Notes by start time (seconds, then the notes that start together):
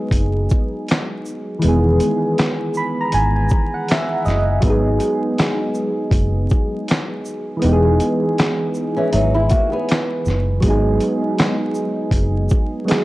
Already playing: F#3 G#3 B3 D#4 G#4
0.11 F#1, kick, closed hi-hat
0.49 kick, shaker
0.88 snare, clap, closed hi-hat
1.25 shaker
1.59 E3 G#3, closed hi-hat
1.64 E1 D#3 B3
1.68 G#4
2.00 closed hi-hat, shaker
2.38 snare, clap, closed hi-hat
2.74 B5, shaker
3.01 A#5
3.12 G#1 G#5, closed hi-hat
3.36 G#5
3.49 kick, shaker
3.74 F#5
3.88 E5, snare, clap, closed hi-hat
4.25 F#1 D#5, snare, shaker
4.60 G#1 F#3 G#3, kick, closed hi-hat
4.65 B3 D#4
4.70 G#4
5.00 closed hi-hat, shaker
5.38 snare, clap, closed hi-hat
5.74 shaker
6.11 F#1, kick, closed hi-hat
6.49 kick, shaker
6.88 snare, clap, closed hi-hat
7.25 shaker
7.57 E3 G#3
7.62 E1 B3 D#4, closed hi-hat
7.66 G4
7.73 G#4
8.00 closed hi-hat, shaker
8.38 snare, clap, closed hi-hat
8.74 shaker
8.96 E3 C#4
9.13 G#1 F#3 D#4, closed hi-hat
9.34 G#3 E4
9.49 A#3 F#4, kick, closed hi-hat, shaker
9.72 B3 G#4
9.89 snare, clap, closed hi-hat
10.25 F#1, snare, shaker
10.60 G#1 F#3 G#3, kick, closed hi-hat
10.65 B3 D#4
10.70 G#4
11.00 closed hi-hat, shaker
11.38 snare, clap, closed hi-hat
11.74 shaker
12.11 F#1, kick, closed hi-hat
12.49 kick, shaker
12.85 F#3 G#3 B3 D#4, closed hi-hat
12.89 G#4, snare, clap